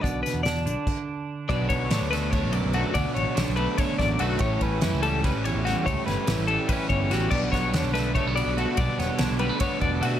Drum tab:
CC |----x--|-------|-------|-------|
RD |-------|xxxxxxx|xxxxxxx|xxxxxxx|
HH |xxxx---|-------|-------|-------|
SD |-oo----|--oo---|--o--o-|--o-o-o|
BD |o---o--|oo--o--|o---oo-|oo--o--|

CC |-------|x------|-------|
RD |xxxxxxx|-xxxxxx|xxxxxxx|
HH |-------|-------|-------|
SD |-oo---o|-ooo---|-oo----|
BD |o---oo-|oo--o--|o---oo-|